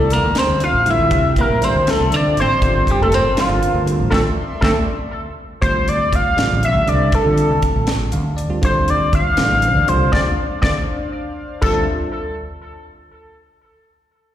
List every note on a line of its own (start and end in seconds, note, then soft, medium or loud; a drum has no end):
0.00 0.21 C2 medium
0.00 5.58 F3 medium
0.00 0.13 A3 medium
0.00 0.13 A4 medium
0.00 4.08 C5 medium
0.00 2.59 E5 medium
0.00 2.58 G5 medium
0.10 0.39 A#3 medium
0.10 0.40 A#4 medium
0.10 closed hi-hat medium
0.23 0.35 D2 medium
0.35 0.67 D3 medium
0.35 0.67 G3 medium
0.35 0.66 C4 medium
0.35 0.63 C4 medium
0.35 0.67 D4 medium
0.35 0.62 C5 loud
0.35 muted fretless electric bass stroke soft
0.35 snare loud
0.35 closed hi-hat medium
0.48 0.60 D2 medium
0.60 0.86 F4 medium
0.60 0.92 F5 loud
0.60 closed hi-hat medium
0.73 0.96 A1 medium
0.85 1.32 D3 medium
0.85 1.32 G3 medium
0.85 1.32 C4 medium
0.85 1.32 E4 medium
0.85 closed hi-hat medium
0.90 1.39 E4 medium
0.90 1.38 E5 loud
0.99 1.10 D2 medium
1.11 1.34 C3 medium
1.11 kick loud
1.11 closed hi-hat medium
1.36 1.64 A#3 medium
1.36 kick medium
1.36 closed hi-hat medium
1.41 1.66 A#4 medium
1.50 1.61 A1 medium
1.61 1.77 D3 medium
1.61 1.77 G3 medium
1.61 1.77 C4 medium
1.61 1.89 C4 medium
1.61 1.77 D4 medium
1.61 1.92 C5 loud
1.61 closed hi-hat medium
1.75 1.86 D2 medium
1.86 2.33 D3 medium
1.86 2.32 G3 medium
1.86 2.14 A3 medium
1.86 2.33 C4 medium
1.86 2.33 D4 medium
1.86 snare loud
1.86 closed hi-hat medium
1.90 2.17 A4 medium
2.00 2.11 C2 medium
2.12 2.39 D3 medium
2.12 2.38 D4 medium
2.12 closed hi-hat medium
2.16 2.39 D5 medium
2.37 2.59 A1 medium
2.37 2.93 C5 loud
2.37 closed hi-hat medium
2.42 2.86 C4 medium
2.62 2.84 G1 medium
2.62 3.08 D3 medium
2.62 3.08 G3 medium
2.62 3.08 C4 medium
2.62 3.08 F4 medium
2.62 4.11 A#4 medium
2.62 4.11 A5 medium
2.62 kick loud
2.62 closed hi-hat medium
2.87 3.01 G3 medium
2.87 kick medium
2.87 closed hi-hat medium
2.91 3.02 G4 medium
2.99 3.22 F1 medium
2.99 3.14 A3 medium
2.99 3.16 A4 medium
3.12 3.38 C4 medium
3.12 3.38 C5 loud
3.12 closed hi-hat medium
3.24 3.36 G1 medium
3.37 3.68 D3 medium
3.37 4.08 F3 medium
3.37 3.68 G3 medium
3.37 3.68 C4 medium
3.37 3.68 D4 medium
3.37 4.09 F4 medium
3.37 snare loud
3.37 closed hi-hat medium
3.49 3.61 G1 medium
3.63 closed hi-hat medium
3.74 3.97 D2 medium
3.86 4.12 D3 medium
3.86 4.12 G3 medium
3.86 4.11 C4 medium
3.86 4.12 F4 medium
3.86 closed hi-hat medium
4.00 4.11 A1 medium
4.10 4.22 D2 medium
4.10 4.20 A3 medium
4.10 4.20 C4 medium
4.10 4.20 D4 medium
4.10 4.19 A4 loud
4.10 5.61 D5 medium
4.10 5.61 E5 medium
4.10 5.61 C6 medium
4.10 kick medium
4.10 snare medium
4.61 4.72 D2 medium
4.61 4.70 A3 medium
4.61 4.72 A3 loud
4.61 4.70 C4 medium
4.61 4.71 C4 medium
4.61 4.70 D4 medium
4.61 4.71 D4 medium
4.61 4.70 A4 medium
4.61 kick loud
4.61 snare loud
5.61 5.74 D2 medium
5.61 6.08 D3 medium
5.61 6.08 G3 medium
5.61 6.08 C4 medium
5.61 6.08 F4 medium
5.61 5.90 C5 medium
5.61 kick loud
5.61 closed hi-hat medium
5.88 5.99 D2 medium
5.88 6.17 D5 medium
5.88 closed hi-hat medium
6.13 6.24 D2 medium
6.13 6.64 F5 loud
6.13 kick medium
6.13 closed hi-hat medium
6.26 muted fretless electric bass stroke soft
6.36 6.49 A1 medium
6.36 6.68 D3 medium
6.36 6.68 G3 medium
6.36 6.68 C4 medium
6.36 6.68 F4 medium
6.36 snare loud
6.36 closed hi-hat medium
6.52 6.76 A1 medium
6.63 6.90 E5 medium
6.63 closed hi-hat medium
6.76 6.87 D2 medium
6.86 7.10 C2 medium
6.86 7.10 D3 medium
6.86 7.10 G3 medium
6.86 7.10 C4 medium
6.86 7.10 D4 medium
6.86 7.16 D5 medium
6.86 closed hi-hat medium
7.12 7.89 A4 medium
7.12 kick loud
7.12 closed hi-hat medium
7.24 7.86 D3 medium
7.24 7.52 D3 medium
7.24 7.86 G3 medium
7.24 7.86 C4 medium
7.24 7.86 F4 medium
7.37 closed hi-hat medium
7.51 7.62 D2 medium
7.62 kick medium
7.62 closed hi-hat medium
7.76 7.98 A1 medium
7.87 snare loud
7.87 closed hi-hat medium
8.12 8.47 D2 medium
8.12 8.36 F5 medium
8.12 closed hi-hat medium
8.37 8.60 D5 medium
8.37 closed hi-hat medium
8.50 8.58 D3 medium
8.50 8.58 G3 medium
8.50 8.58 C4 medium
8.50 8.58 F4 medium
8.50 muted fretless electric bass stroke soft
8.62 8.74 D2 loud
8.62 9.08 D3 medium
8.62 9.08 G3 medium
8.62 9.08 C4 medium
8.62 11.60 D4 medium
8.62 9.08 F4 medium
8.62 8.91 C5 medium
8.62 11.60 C5 medium
8.62 11.61 D5 medium
8.62 11.61 F5 medium
8.62 kick loud
8.62 closed hi-hat medium
8.88 9.00 D2 medium
8.88 9.14 D5 medium
8.88 closed hi-hat medium
9.13 9.24 D2 medium
9.13 9.90 F5 loud
9.13 kick medium
9.13 closed hi-hat medium
9.27 muted fretless electric bass stroke soft
9.37 9.50 A1 medium
9.37 9.68 D3 medium
9.37 9.68 E3 medium
9.37 9.68 G3 medium
9.37 9.68 C4 medium
9.37 snare loud
9.37 closed hi-hat medium
9.52 9.77 A1 medium
9.62 closed hi-hat medium
9.77 9.87 D2 medium
9.87 10.11 C2 medium
9.87 10.10 D3 medium
9.87 10.11 G3 medium
9.87 10.11 C4 medium
9.87 10.11 F4 medium
9.87 10.12 C5 medium
9.87 closed hi-hat medium
10.12 10.22 D2 loud
10.12 10.20 A3 medium
10.12 10.21 C4 medium
10.12 10.20 D4 medium
10.12 10.20 D5 loud
10.12 kick medium
10.12 snare medium
10.62 10.72 D2 loud
10.62 10.70 A3 medium
10.62 10.70 C4 medium
10.62 10.70 D4 loud
10.62 10.70 D5 loud
10.62 kick loud
10.62 snare loud
11.61 11.86 D2 medium
11.61 11.86 D3 medium
11.61 11.85 G3 medium
11.61 11.86 C4 medium
11.61 11.85 D4 medium
11.61 11.85 F4 medium
11.61 11.86 F4 medium
11.61 11.85 A4 medium
11.61 11.85 C5 medium
11.61 11.85 E5 medium
11.61 kick loud
11.61 crash medium